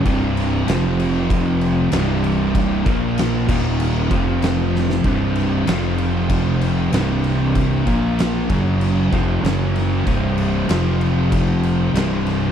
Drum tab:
CC |x-x-x-x-x-x-x-x-|x-x-x-x-x-x-x---|x-x-x-x-x-x-x-x-|x-x-x-x-x-x-x-x-|
SD |----o-------o---|----o-------o-oo|----o-------o-o-|----o-------o-o-|
BD |o-------o-------|o-o---o---o-----|o-------o-------|o-o---o---o-----|

CC |x-x-x-x-x-x-x-x-|
SD |----o-------o-o-|
BD |o-------o-------|